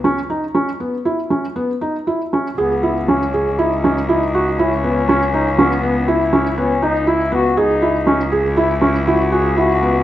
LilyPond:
<<
  \new Staff \with { instrumentName = "Felt piano" } { \time 5/4 \key cis \minor \tempo 4 = 120 cis'8 dis'8 cis'8 b8 e'8 cis'8 b8 dis'8 e'8 cis'8 | gis'8 e'8 cis'8 gis'8 e'8 cis'8 e'8 fis'8 e'8 b8 | cis'8 dis'8 cis'8 b8 e'8 cis'8 b8 dis'8 e'8 b8 | gis'8 e'8 cis'8 gis'8 e'8 cis'8 e'8 fis'8 e'8 b8 | }
  \new Staff \with { instrumentName = "Muted trumpet" } { \time 5/4 \key cis \minor r1 r4 | b4 cis'4 dis'4 dis'4 cis'4~ | cis'4 b4 e'4 cis'8 dis'8 e'8 fis'8 | dis'4. r8 e'4 fis'8 gis'8 fis'4 | }
  \new Staff \with { instrumentName = "Cello" } { \clef bass \time 5/4 \key cis \minor r1 r4 | cis,1~ cis,4~ | cis,1~ cis,4 | cis,1~ cis,4 | }
>>